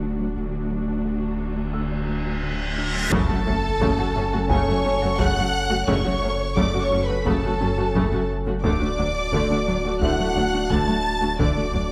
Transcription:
Already playing: D1 D2 D4 F#4 F#5 F#6
0.03 D4
0.19 F#3
0.36 D1 D2 D3 D4 F#4, reverse cymbal
0.71 F#3
0.88 D4
1.05 D3
1.40 A3
1.57 A3
1.73 D3 E6
1.92 D4
2.09 A3
2.26 F#3
2.43 D3
2.78 D4
2.95 F#3
3.11 F#1 F#2 C#3 F#3 A3 C#4 A4 A5, taiko, impact
3.29 F#2 A3 F#4
3.46 F#1 F#2 F#3 A3 C#4
3.81 F#1 F#2 C#3 F#3 A3, taiko
3.99 F#2 A3 F#4
4.16 F#1 F#2 F#3 A3 C#4
4.33 F#2 A3 F#4
4.50 F#1 F#2 C#3 F#3 A3 C#5 G#5 C#6, taiko
4.67 F#2 A3 F#4
4.85 F#1 F#2 F#3 C#4
5.02 F#2 A3 F#4
5.18 F#1 F#2 C#3 F#3 A3 F#5 F#6, taiko
5.35 F#2 A3 F#4
5.69 F#2 A3 F#4
5.87 F#1 F#2 C#3 F#3 A3 C#4 A4 C#5 C#6, taiko
6.05 F#2 A3 F#4
6.22 F#1 F#2 F#3 A3 C#4
6.57 F#1 F#2 C#3 F#3 A3 D5 D6, taiko
6.74 F#2 A3 F#4
6.81 C#5 C#6
6.92 F#1 F#2 F#3 A3 C#4
7.03 B4 B5
7.09 F#2 A3 F#4
7.25 F#1 F#2 C#3 F#3 A3 A4 A5, taiko
7.43 F#2 A3 F#4
7.61 F#1 F#2 F#3 C#4
7.78 F#2 A3 F#4
7.95 F#1 F#2 C#3 F#3 A3, taiko
8.12 F#2 A3 F#4
8.46 F#2 A3 F#4
8.63 D1 D2 D3 A3 D4 F#4 D5 D6, taiko
8.81 D2 A3 D4 F#4
8.98 D2 F#3 D4
9.32 D2 D3 A3, taiko
9.50 D2 A3 D4 F#4
9.67 D2 F#3 D4
9.84 D2 A3 D4 F#4
10.01 D2 D3 A3 E4 E5 F#5 F#6, taiko
10.18 D2 F#3 A3 F#4
10.35 D2 F#3 A3 D4
10.53 D2 A3 D4 F#4
10.70 D2 D3 A3 A5 A6, taiko
10.87 D2 F#3 A3 F#4
11.22 D2 A3 D4 F#4
11.39 D1 D2 D3 A3 D4 F#4 D5 D6, taiko
11.56 D2 A3 D4 F#4
11.73 D2 F#3 D4

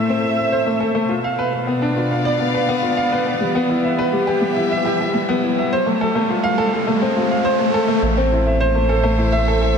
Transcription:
Already playing: A2 A3 E4 A4 C5 E5, riser
0.09 C4
0.24 E4
0.38 E5
0.52 C5
0.66 A3
0.80 A4
0.95 A3
1.09 B2 F4
1.24 F5
1.39 B4
1.53 B3 B4
1.61 D5
1.67 B3
1.82 D4
1.96 F4
2.11 F5
2.25 D5
2.40 B3
2.54 B4
2.69 B3
2.83 F4
2.97 F5
3.12 B4
3.27 B4
3.40 E3 G3
3.55 B3
3.69 E4
3.77 G4
3.84 E5
3.99 B4
4.13 G3
4.19 E5
4.27 G4
4.41 G3
4.56 E4
4.71 E5
4.85 G4
5.00 G4
5.14 G3
5.29 B3
5.43 E4
5.58 E5
5.73 C5
5.86 A3
6.01 A4
6.15 A3
6.30 F4
6.44 F5
6.58 A4
6.73 A4
6.87 A3
7.02 C4
7.16 F4
7.31 F5
7.45 C5
7.59 A3
7.74 A4
7.88 A3
8.02 A1 A2 A3
8.17 C4
8.32 E4
8.45 A3 E5
8.60 C5
8.67 C5
8.75 A3
8.89 A4
9.03 A3 E5
9.18 E4
9.32 E5
9.48 A4
9.62 A4

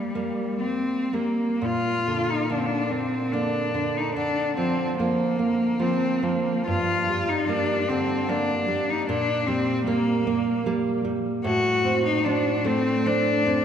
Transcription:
Already playing: G3 A#3
0.15 G3 A#3
0.60 C4
1.13 G3 A#3
1.62 A#2 F4
2.07 D3
2.30 D#4
2.50 D3 A#3 D4
2.59 C4
2.65 D4
2.90 A#3 C4
3.32 D3 A#3 D4
3.74 D3
3.97 D#4
4.15 D3 D4
4.56 F3 C4
4.99 F3 A#3
5.39 A#3
5.79 F3 A#3 C4
6.23 F3 A#3
6.66 G2 F4
7.09 G3
7.29 D#4
7.48 G3 A#3 D4
7.88 D3 C4
8.28 G3 A#3 D4
8.68 G3
8.89 D#4
9.08 A#2 D4
9.47 G3 C4
9.87 G3 A#3
10.27 A#3
10.66 G3 A#3
11.05 G3
11.44 A2 F#4
11.84 C4
12.05 D#4
12.24 C4 D4
12.65 A3 C4
13.06 C4 D4
13.47 C4

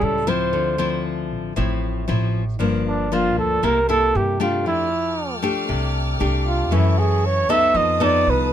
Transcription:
Already playing: A2 G3 C#4 E4
0.01 C#2 A4
0.27 F3 C4 E4 C5
0.53 D2 D3
0.78 F3 C4 E4
1.31 A1
1.56 A1 A2 F3 C4 E4
2.08 A1 F3 C4 E4
2.59 G1 G2 F3 A#3 D4
2.88 D4
3.12 F3 A#3 D4 F4
3.37 D2 A4
3.63 C2 C3 A#3 E4 A4 A#4
3.89 A#3 E4 A4
4.15 G2 G4
4.40 A3 D4 F4 G4
4.66 F2 F3 E4 A4 G5 D6 F6
5.42 C2 A3 D4 G4
5.69 C2 C3
6.20 C2 A3 D4 G4
6.47 F4
6.71 F#2 E3 A3 C#4 E4 E5 F#5 C#6
6.99 G#4
7.26 C#5
7.49 C#2 B3 D#4 A4 E5
7.74 F2 F3 B4 D#5 F5 A5 D#6
8.00 B3 D#4 A4 D5
8.27 C2 B4

